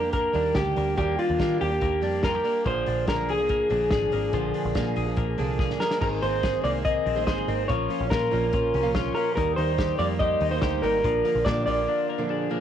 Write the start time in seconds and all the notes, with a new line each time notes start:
Already playing: F2 A#3 D4 G4 A#4
0.02 A#3 D4 G4
0.13 A#3 A#4, kick, closed hi-hat
0.33 D#2 D#3 G3 A#3 D4 G4, open hi-hat
0.55 D2 G4, kick, snare, closed hi-hat
0.75 D2 G3 A#3 D4 G4, open hi-hat
0.97 D#2 D#3 G3 A#3 D4 G4, kick, closed hi-hat
1.19 D4 F4, open hi-hat
1.30 D#2
1.38 D#3 G3 A#3 D4 G4, kick, snare, closed hi-hat
1.61 D#2 G4, open hi-hat
1.69 A#3 D4 G4
1.81 D#2 A#3, kick, closed hi-hat
2.01 F2 D#3 G3 A#3 D4 G4, open hi-hat
2.23 F4 A#4, kick, snare, closed hi-hat
2.35 G4
2.43 G3 A#3 D4 G4, open hi-hat
2.64 A#1 A#2 D3 F3 A#3 D4 G#4 C5, kick, closed hi-hat
2.86 A#1 D4, open hi-hat
3.07 A#2 D3 F3 A#3 D4 G#4 A#4, kick, snare, closed hi-hat
3.28 C2 G#4, open hi-hat
3.38 F3 A#3 D4 G#4
3.49 A#3, kick, closed hi-hat
3.69 A#1 A#2 D3 F3 A#3 D4 G#4, open hi-hat
3.91 G#1 G#4, kick, snare, closed hi-hat
4.11 G#1 F3 A#3 D4 G#4, open hi-hat
4.33 A#1 A#2 D3 F3 A#3 D4 G#4, kick, closed hi-hat
4.54 D4, open hi-hat
4.65 A#1
4.75 A#2 D3 F3 A#3 D4 G#4, kick, snare, closed hi-hat
4.96 A#1 G#4, open hi-hat
5.07 F3 A#3 D4 G#4
5.17 A#1 A#3, kick, closed hi-hat
5.38 C2 A#2 D3 F3 A#3 D4 G#4, open hi-hat
5.59 G#4, kick, snare
5.70 snare
5.80 F3 A#3 D4 G#4 A#4, snare
5.91 snare
6.01 G#1 D#3 A#3 C4 D#4 G#4 A#4 C5, kick, crash
6.22 G#1 A#3 C4 D#4 G#4 C5, open hi-hat
6.43 C4 G#4 C5, kick, snare, closed hi-hat
6.64 C2 G#3 A#3 D#4 G#4 C5 D5, open hi-hat
6.84 A#3 C4 D#4 G#4 A#4 C5 D#5, kick, closed hi-hat
7.06 A#1 C4, open hi-hat
7.16 G#3 A#3 D#4 G#4 C5
7.27 G#1 C4 G#4 A#4 C5, kick, snare, closed hi-hat
7.47 G#1 G#3 A#3 C4 D#4 G#4 C5, open hi-hat
7.68 A#1 F3 A#3 C#4 F4 A#4 C#5, kick, closed hi-hat
7.88 F3 A#3 C#4 F4, open hi-hat
8.00 A#1
8.10 A#2 C#4 F4 A#4, kick, snare, closed hi-hat
8.30 A#1 A#2 F3 A#3 C#4 F4, open hi-hat
8.52 A#1 F3 A#3 C#4 F4 C5, kick, closed hi-hat
8.74 C2 C#4, open hi-hat
8.83 A#2 F3 A#3 C#4 F4
8.95 C#4 F4 C#5, kick, snare, closed hi-hat
9.14 A#2 F3 A#3 C#4 F4 A#4, open hi-hat
9.35 D#2 D#3 G3 A#3 D#4 G4 A#4, kick, closed hi-hat
9.56 D#2 D#3 G3 A#3 D#4 C5, open hi-hat
9.78 D#4 G4 C5, kick, snare, closed hi-hat
9.98 F2 D#3 G3 A#3 D#4 D5, open hi-hat
10.19 D#3 G3 A#3 D#4 G4 C5 D#5, kick, closed hi-hat
10.41 D#2 D#4, open hi-hat
10.51 D#3 G3 A#3 D#4 C5
10.62 D2 D#4 G4 A#4, kick, snare, closed hi-hat
10.82 G#1 D#3 G3 A#3 D#4 A#4, open hi-hat
11.03 A#1 D3 F3 A#3 D4 F4 A#4, kick, closed hi-hat
11.24 D3 F3 A#3 D4, open hi-hat
11.35 A#1
11.45 A#2 D4 F4 G4 D5, kick, snare, closed hi-hat
11.66 A#1 A#2 D3 F3 A#3 D4 D5, open hi-hat
11.87 D3 F3 A#3 D4 F4 A#4
12.09 A#3
12.18 A#2 D3 F3 A#3 D4
12.29 D4 F4 G#4
12.50 A#2 D3 F3 A#3 D4